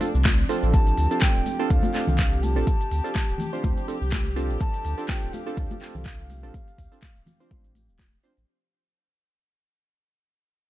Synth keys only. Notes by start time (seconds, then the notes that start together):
0.01 C4 D4 F4 A4
0.49 C4 D4 F4 A4
1.11 C4 D4 F4 A4
1.59 C4 D4 F4 A4
1.94 C4 D4 F4 A4
2.56 C4 D4 F4 A4
3.04 C4 D4 F4 A4
3.53 C4 D4 F4 C5
3.88 C4 D4 F4 A4
4.36 C4 D4 F4 A4
4.98 C4 D4 F4 A4
5.46 C4 D4 F4 A4
5.81 C4 D4 F4 A4
6.43 C4 D4 F4 A4
6.92 C4 D4 F4 A4
7.40 C4 D4 F4 C5
8.24 C4 D4 F4 C5